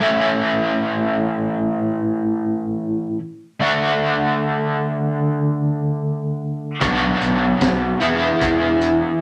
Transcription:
0.01 A2 E3 A3 C#4 E4
3.60 D3 A3 D4 F#4
6.80 B1 B2 F#3 B3 D4 F#4, kick, closed hi-hat
7.21 B1, closed hi-hat
7.61 B1, kick, snare, closed hi-hat
8.01 E1 E3 B3 E4 G#4, closed hi-hat
8.41 E1, kick, closed hi-hat
8.81 closed hi-hat

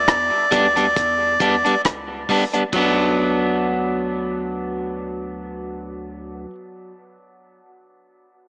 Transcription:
Already playing: D5
0.08 E2, kick, cross-stick, closed hi-hat
0.51 D2 G3 B3 D4, kick, closed hi-hat
0.76 G3 B3 D4, closed hi-hat
0.96 E2, kick, closed hi-hat
1.40 E2 G3 B3 D4, kick, closed hi-hat
1.65 G3 B3 D4, closed hi-hat
1.85 C#2, kick, cross-stick, closed hi-hat
2.29 G3 B3 D4, kick, open hi-hat
2.54 G3 B3 D4, closed hi-hat
2.73 D2 F#3 B3, kick, crash
2.78 D4

